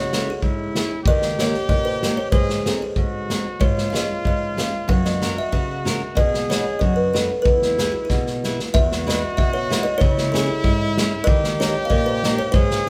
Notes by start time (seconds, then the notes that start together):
Already playing: C#3 F#4 C#5
0.13 C#4 E4 G#4 A4, snare, hi-hat pedal
0.30 G#4
0.36 F#4
0.42 G#2 E4, kick
0.75 C#4 E4 G#4, snare, hi-hat pedal
1.04 G4 D#5, kick
1.08 D#3
1.22 snare
1.39 A#3 D#4 G4 C#5, snare, hi-hat pedal
1.54 snare
1.69 A#2 D#5, kick
1.85 C5
2.03 A#3 D#4 G4, snare, hi-hat pedal
2.17 C#5
2.32 G#2 G#4 C5, kick
2.49 snare
2.66 C4 D#4 G#4 A4, snare, hi-hat pedal
2.82 G#4
2.96 G#2 F#4, kick
3.30 C4 D#4 G#4, snare, hi-hat pedal
3.60 G#2 F4 C#5, kick
3.78 snare
3.90 C#4 F4 G#4 F5
3.95 D#5, snare, hi-hat pedal
4.25 G#2 D#5, kick
4.57 C#4 F4 G#4 F5, snare, hi-hat pedal
4.88 F#2 F#4 F#5, kick
5.05 D#5, snare
5.21 C#4 F#4 A#4, snare, hi-hat pedal
5.38 E5
5.52 C#3 F#5, kick
5.85 C#4 F#4 A#4, snare, hi-hat pedal
6.15 B2 G#4 D#5, kick
6.34 snare
6.49 D#4 F#4 B4 C#5, snare, hi-hat pedal
6.79 F#2 F#4 D#5, kick
6.96 B4
7.14 D#4 F#4 A4 B4, snare, hi-hat pedal
7.42 E2 E4 B4, kick
7.62 snare
7.78 E4 G#4 B4, snare, hi-hat pedal
7.92 F#4
8.05 G#4
8.09 B2, kick, snare
8.27 snare
8.44 E4 G#4 B4, snare, hi-hat pedal
8.60 snare
8.74 E2 F#4 E5, kick
8.92 snare
9.07 E4 G#4 B4 D#5, snare, hi-hat pedal
9.37 B2 E5, kick
9.53 C#5
9.70 E4 G#4 B4, snare, hi-hat pedal
9.83 D#5
9.98 C#3 C#5, kick
10.02 E4
10.18 snare
10.32 C#4 E4 G#4 A4, snare, hi-hat pedal
10.47 G#4
10.64 G#2, kick
10.98 C#4 E4 G#4, snare, hi-hat pedal
11.24 D#3 G4 D#5, kick
11.44 snare
11.60 A#3 D#4 G4 C#5, snare, hi-hat pedal
11.85 F5
11.90 A#2 D#5, kick
12.06 C5
12.24 A#3 D#4 G4, snare, hi-hat pedal
12.39 C#5
12.52 G#2 G#4 C5, kick
12.71 snare